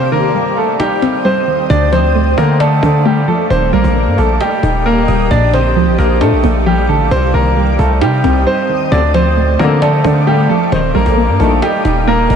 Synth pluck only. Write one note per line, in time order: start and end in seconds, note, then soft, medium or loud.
0.00 1.02 C3 loud
0.12 1.25 D#3 medium
0.35 1.24 G3 medium
0.80 1.70 D#4 loud
1.02 1.70 C4 medium
1.25 1.70 G3 medium
1.47 1.70 D#3 medium
1.70 2.83 D3 medium
1.93 3.05 F3 medium
2.15 3.04 A3 medium
2.60 3.50 D5 loud
2.83 3.50 D4 medium
3.05 3.50 A3 medium
3.28 3.50 F3 medium
3.51 4.63 D#3 loud
3.73 4.86 G3 medium
3.96 4.84 A#3 medium
4.41 5.31 D#5 loud
4.63 5.31 D#4 medium
4.86 5.31 A#3 loud
5.08 5.31 G3 medium
5.31 6.44 A#2 loud
5.53 6.66 D3 medium
5.76 6.65 F3 medium
6.21 7.11 D4 loud
6.44 7.11 A#3 medium
6.66 7.11 F3 medium
6.89 7.11 D3 medium
7.11 8.24 C3 loud
7.34 8.47 D#3 medium
7.56 8.46 G3 medium
8.01 8.92 D#4 loud
8.24 8.92 C4 medium
8.47 8.92 G3 medium
8.69 8.92 D#3 medium
8.92 10.05 D3 medium
9.14 10.27 F3 medium
9.37 10.26 A3 medium
9.82 10.72 D5 loud
10.04 10.72 D4 medium
10.27 10.72 A3 medium
10.49 10.72 F3 medium
10.72 11.85 D#3 loud
10.95 12.08 G3 medium
11.17 12.06 A#3 medium
11.62 12.36 D#5 loud
11.85 12.36 D#4 medium
12.07 12.36 A#3 loud
12.30 12.36 G3 medium